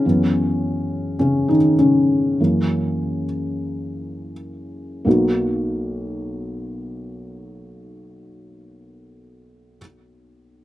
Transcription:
<<
  \new Staff \with { instrumentName = "Felt piano" } { \time 4/4 \key b \major \tempo 4 = 43 <cis cis'>4 <cis cis'>16 <dis dis'>16 <cis cis'>2 r8 | <ais b dis' fis'>1 | }
  \new Staff \with { instrumentName = "Felt piano" } { \clef bass \time 4/4 \key b \major <fis, e b>4. r8 <fis, e ais>8 r4. | b,,1 | }
>>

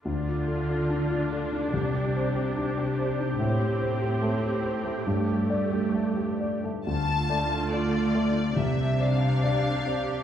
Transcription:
<<
  \new Staff \with { instrumentName = "Violin section" } { \time 4/4 \key d \minor \tempo 4 = 71 r1 | r1 | a''4 d''4 e''8 f''4. | }
  \new Staff \with { instrumentName = "Grand piano" } { \time 4/4 \key d \minor d,16 f'16 a'16 f'16 d'16 f'16 a'16 d'16 c,16 g'16 c''16 g'16 d'16 g'16 c''16 d'16 | a,16 g'16 c''16 g'16 a16 g'16 c''16 a16 g,16 g'16 d''16 g'16 a16 g'16 d''16 a16 | d,8 <a d''>8 <f' d''>8 <a d''>8 c,8 <c' d''>8 <g' d''>8 <c' d''>8 | }
  \new Staff \with { instrumentName = "Viola section" } { \time 4/4 \key d \minor << { f'2 g'2~ | g'2.~ g'8. r16 | f'2 g'2 | } \\ { d'1 | c'2 a4.~ a16 r16 | a2 d'2 | } >> }
  \new Staff \with { instrumentName = "Cello section" } { \clef bass \time 4/4 \key d \minor d2 c2 | a,2 g,4.~ g,16 r16 | d2 c2 | }
>>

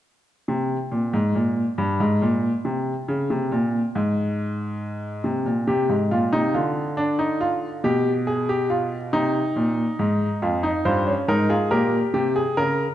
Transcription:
<<
  \new Staff \with { instrumentName = "Grand piano" } { \time 6/8 \key c \phrygian \tempo 4. = 46 r2. | r2. | r8 g'8 f'16 ees'16 f'8 d'16 ees'16 f'8 | g'8 aes'16 g'16 f'8 ees'4. |
f'16 ees'16 f'16 des'16 ees'16 f'16 g'4. | }
  \new Staff \with { instrumentName = "Grand piano" } { \clef bass \time 6/8 \key c \phrygian << { r8 c8 bes,16 aes,16 bes,8 g,16 aes,16 bes,8 | c8 des16 c16 bes,8 aes,4. | r2. | r2. |
r8 c''8 bes'16 aes'16 bes'8 g'16 aes'16 bes'8 | } \\ { r2. | r2. | c16 bes,16 c16 aes,16 bes,16 c16 d4. | b,4. c8 bes,8 aes,8 |
f,8 g,8 aes,8 bes,8 c8 des8 | } >> }
>>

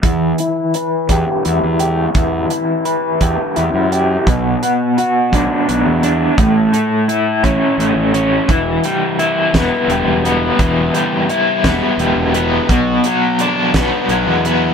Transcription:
<<
  \new Staff \with { instrumentName = "Overdriven electric guitar" } { \time 6/8 \key e \dorian \tempo 4. = 57 e8 e'8 b'8 g'8 e'8 g'8 | e8 e'8 b'8 g'8 e'8 g'8 | b,8 b8 fis'8 d'8 b8 d'8 | a,8 a8 e'8 cis'8 a8 cis'8 |
e8 g8 e'8 b8 g8 b8 | e8 g8 e'8 b8 g8 b8 | b,8 fis8 d'8 b8 fis8 b8 | }
  \new Staff \with { instrumentName = "Fingered electric bass" } { \clef bass \time 6/8 \key e \dorian e,8 r4 e,16 r16 e,16 e,8. | e,8 r4 e,16 r16 e,16 fis,8. | b,,8 r4 b,,16 r16 b,,16 e,8. | a,,8 r4 a,,16 r16 a,,16 a,,8. |
e,,8 r4 e,,16 r16 e,,16 e,,8. | e,,8 r4 e,,16 r16 e,,16 e,,8. | b,,8 r4 b,,16 r16 b,,16 e,8. | }
  \new DrumStaff \with { instrumentName = "Drums" } \drummode { \time 6/8 <hh bd>8 hh8 hh8 <hh bd>8 hh8 hh8 | <hh bd>8 hh8 hh8 <hh bd>8 hh8 hh8 | <hh bd>8 hh8 hh8 <hh bd>8 hh8 hh8 | <hh bd>8 hh8 hh8 <hh bd>8 hh8 hh8 |
<hh bd>8 hh8 hh8 <hh bd sn>8 hh8 hh8 | <hh bd>8 hh8 hh8 <hh bd sn>8 hh8 hh8 | <hh bd>8 hh8 hh8 <hh bd sn>8 hh8 hh8 | }
>>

